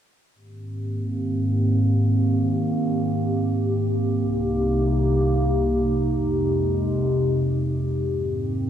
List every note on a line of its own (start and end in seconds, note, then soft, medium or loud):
0.35 4.15 G#2 medium
0.35 4.15 D#3 medium
0.35 4.15 A#3 medium
0.35 4.15 C4 medium
0.35 8.70 G4 medium
4.19 6.09 C2 medium
4.19 6.09 C3 medium
4.19 6.09 A#3 medium
4.19 7.99 D#4 medium
6.11 8.01 F2 medium
6.11 8.01 C3 medium
6.11 8.01 G#3 medium
8.03 8.70 G#2 medium
8.03 8.70 D#3 medium
8.03 8.70 A#3 medium
8.03 8.70 C4 medium